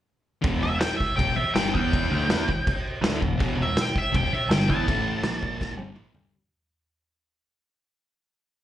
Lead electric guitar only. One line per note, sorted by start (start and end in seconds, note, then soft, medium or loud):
0.63 0.80 E5 loud
0.79 0.96 G5 medium
0.97 1.16 E5 medium
1.16 1.36 G5 loud
1.36 1.54 E5 loud
1.54 1.72 G5 medium
1.75 2.82 G5 medium
3.62 3.81 E5 loud
3.81 3.98 G5 medium
3.98 4.15 E5 loud
4.15 4.33 G5 loud
4.33 4.52 E5 loud
4.52 4.69 G5 loud
4.70 5.75 A5 loud